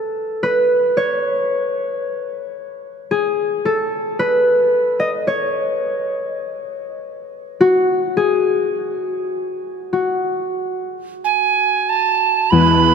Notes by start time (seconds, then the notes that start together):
Already playing: A4
0.43 B4
0.97 C#5
3.11 G#4
3.65 A4
4.19 B4
5.00 D#5
5.27 C#5
7.61 F#4
8.17 G#4
9.93 F#4
11.24 G#5
11.89 A5
12.50 E2 B4 B5
12.55 G#3 E4